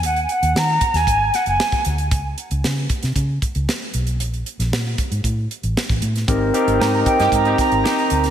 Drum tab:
HH |xxxx--xxx-xx-xxx|x-xx--xxx-xx--xx|xxxx--xxx-xx-xxx|x-xx--xxxxxx-xxx|
SD |----o--o--o-o---|----o--o----o---|---oo-------o--o|----o--o--o-o--o|
BD |------o-o----o--|o-----o-o-o-----|------o-o----o--|o-----o-o-o-----|